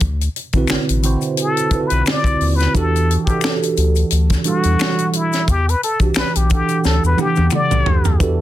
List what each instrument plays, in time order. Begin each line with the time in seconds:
0.00 analog synth bass D2, kick, closed hi-hat, maracas
0.21 closed hi-hat, maracas
0.36 closed hi-hat
0.53 analog synth bass B1, tine electric piano D3 C4 E4, kick, closed hi-hat, maracas
0.57 tine electric piano F#4 B4
0.68 finger snap, maracas
0.70 analog synth bass A1, finger snap, snare
0.89 analog synth bass A1, closed hi-hat, maracas
1.03 tine electric piano D3 C4 E4 F#4 C5, closed hi-hat, maracas
1.21 closed hi-hat, maracas
1.37 closed hi-hat, maracas
1.42 muted trumpet A4
1.57 closed hi-hat, maracas
1.71 analog synth bass B1, tine electric piano D3 C4 E4 F4, kick, closed hi-hat, maracas
1.75 tine electric piano B4
1.80 tine electric piano F#4
1.87 muted trumpet B4, closed hi-hat, maracas
1.91 analog synth bass B1
2.06 finger snap, snare, maracas
2.10 muted trumpet D5
2.24 analog synth bass C2, kick, closed hi-hat, maracas
2.41 analog synth bass D#2, open hi-hat
2.55 muted trumpet B4
2.60 snare, closed hi-hat, maracas
2.74 analog synth bass E2, tine electric piano E3 D4 F#4 G4 A4, kick, closed hi-hat, maracas
2.78 muted trumpet A4
2.96 closed hi-hat, maracas
3.11 closed hi-hat
3.24 analog synth bass D2, tine electric piano E3, muted trumpet G4, kick, closed hi-hat
3.28 tine electric piano D4 F#4 G4 A4, maracas
3.41 finger snap, maracas
3.44 finger snap, snare
3.63 closed hi-hat, maracas
3.77 analog synth bass D2, closed hi-hat, maracas
3.95 closed hi-hat, maracas
4.11 analog synth bass D2, closed hi-hat, maracas
4.30 kick, snare, closed hi-hat, maracas
4.44 tine electric piano E3 G3 D4 F#4 A4, muted trumpet F#4, closed hi-hat, maracas
4.63 analog synth bass E2, closed hi-hat, maracas
4.79 finger snap, maracas
4.81 finger snap, snare
4.98 closed hi-hat, maracas
5.13 muted trumpet E4, closed hi-hat
5.32 snare, closed hi-hat, maracas
5.48 analog synth bass E2, muted trumpet G4, kick, closed hi-hat, maracas
5.69 muted trumpet B4, closed hi-hat, maracas
5.83 muted trumpet A4, closed hi-hat
5.99 analog synth bass C2, tine electric piano E3 D4 F#4 G4, kick, closed hi-hat, maracas
6.14 finger snap, maracas
6.16 analog synth bass B1, muted trumpet B4, finger snap, snare
6.35 analog synth bass B1, muted trumpet G4, closed hi-hat, maracas
6.49 tine electric piano E3 D4 A4 F#5, muted trumpet G4, kick, closed hi-hat, maracas
6.69 closed hi-hat, maracas
6.84 analog synth bass D2, muted trumpet A4, snare, maracas
7.04 analog synth bass E2, muted trumpet B4, maracas
7.17 tine electric piano E3 D4 G4 F#5, high tom, maracas
7.21 muted trumpet G4
7.36 analog synth bass E2, high tom, maracas
7.50 finger snap, mid tom, maracas
7.55 muted trumpet D5
7.71 analog synth bass C2, mid tom, maracas
7.86 analog synth bass D2, floor tom
8.05 analog synth bass D#2, floor tom, maracas
8.19 analog synth bass E2, tine electric piano E3 D4 F#4 G4 A4, kick, closed hi-hat, maracas